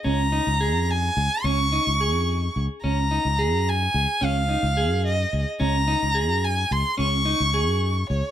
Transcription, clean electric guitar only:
X:1
M:5/8
L:1/8
Q:1/4=108
K:Ebdor
V:1 name="Clean electric guitar"
D E A2 z | D E A2 z | D E A2 z | D E A2 z |
D E A2 z | D E A2 z |]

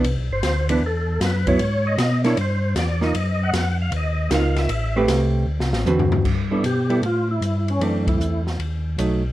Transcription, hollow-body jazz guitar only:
X:1
M:4/4
L:1/8
Q:"Swing" 1/4=155
K:G
V:1 name="Hollow-body jazz guitar"
z3 [E,B,D] z3 [F,B,E] | z3 [_B,DE] z3 [B,_E=F] | z6 [_B,_E=F]2 | z [A,CGB]3 z2 [D,CFB]2 |
z [G,B,EA] z [G,B,EA] z4 | [E,A,C]3 z3 [F,A,^D] z |]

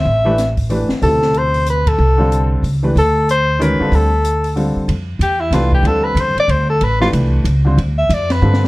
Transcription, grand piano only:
X:1
M:3/4
L:1/8
Q:"Swing" 1/4=186
K:Ddor
V:1 name="Grand piano"
z [E,A,DGB] z2 [E,A,DGB] z | [B,,C,F,EG]4- [B,,C,F,EG] z | z [D,G,CFA]3 z [E,A,DGB] | z4 [_E,^G,^C^F_B] [D,=G,=C=FA]- |
[D,G,CFA] z3 [D,G,CFA]2 | z4 [E,A,DGB]2 | [D,G,CFA]4- [D,G,CFA] z | z [E,A,DGB]3 z [D,G,CFc] |
z4 [D,G,CFA]2 |]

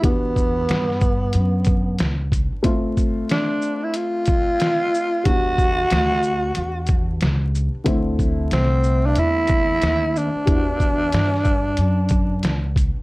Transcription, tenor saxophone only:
X:1
M:4/4
L:1/16
Q:"Swing 16ths" 1/4=92
K:Ephr
V:1 name="Tenor saxophone"
B,12- B,2 z2 | z4 D3 E F8 | ^F12 z4 | z4 C3 D E6 D2- |
D12- D2 z2 |]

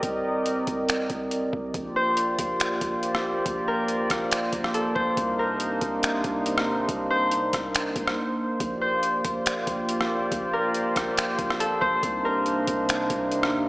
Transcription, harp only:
X:1
M:4/4
L:1/8
Q:1/4=140
K:Bb
V:1 name="Harp"
z8 | z c4- c z2 | z B4- B A c | z B4- B z2 |
z c6- c | z c4- c z2 | z B4- B A c | z B4- B z2 |]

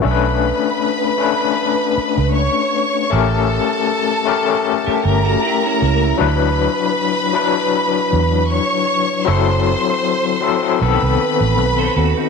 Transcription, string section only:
X:1
M:4/4
L:1/8
Q:"Swing 16ths" 1/4=78
K:Bm
V:1 name="String section"
[Bb]6 [cc']2 | [Aa]4- [Aa] [_B_b]3 | [Bb]6 [cc']2 | [=c=c']4 [Bb]4 |]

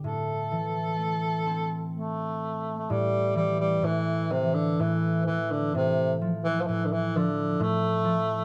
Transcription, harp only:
X:1
M:3/4
L:1/8
Q:1/4=63
K:Am
V:1 name="Harp" clef=bass
A,, E, A, C3 | A,, E, A,, E, A,, E, | A,, F, A,, F, A,, F, |]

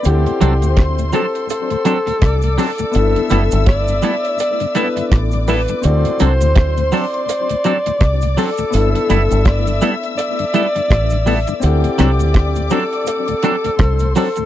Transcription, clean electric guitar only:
X:1
M:4/4
L:1/8
Q:"Swing 16ths" 1/4=83
K:G
V:1 name="Clean electric guitar"
z [F,CDA] z [F,CDA] z [F,CDA] z [F,CDA] | z [G,B,EA] z [G,B,EA] z [G,B,EA] z [G,B,EA] | z [F,CDA] z [F,CDA] z [F,CDA] z [F,CDA] | z [G,B,EA] z [G,B,EA] z [G,B,EA] z [G,B,EA] |
z [F,CDA] z [F,CDA] z [F,CDA] z [F,CDA] |]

